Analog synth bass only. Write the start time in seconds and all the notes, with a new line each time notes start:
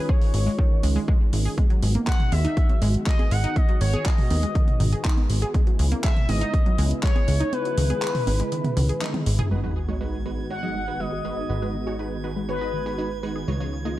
0.34 G#1
0.83 C#2
1.33 G#1
1.83 G#1
2.32 D#2
2.82 G#1
3.31 G#1
3.81 G#1
4.30 D#2
4.80 G#1
5.30 G#1
5.79 C#2
6.29 G#1
6.78 C#2
7.28 C#2
7.78 C#2
8.27 G#1
8.77 C#2
9.26 G#1
9.51 G#1
11.50 G#1
13.48 C#2